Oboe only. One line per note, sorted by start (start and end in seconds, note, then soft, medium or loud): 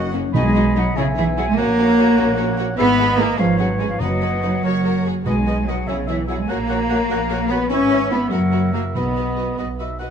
0.00 0.11 F#4 medium
0.33 0.98 B5 medium
0.97 1.57 G#5 medium
1.58 2.76 F#5 medium
2.78 3.10 E5 medium
3.09 3.38 D#5 medium
3.39 4.01 C#5 medium
4.00 4.63 D#5 soft
4.65 5.05 C#5 soft
5.26 5.36 D#5 soft
5.47 5.56 D#5 soft
5.68 5.77 D#5 soft
5.87 5.97 E5 soft
6.07 6.16 E5 soft
6.28 6.37 E5 soft
6.49 6.58 F#5 medium
6.70 6.79 F#5 soft
6.89 6.99 F#5 soft
7.11 7.20 F#5 medium
7.32 7.41 F#5 soft
7.52 7.60 F#5 soft
7.72 8.29 E5 medium
8.33 8.98 E5 soft
8.97 9.55 D#5 soft
9.59 9.68 D#5 soft
9.80 9.99 E5 soft
9.99 10.10 F#5 soft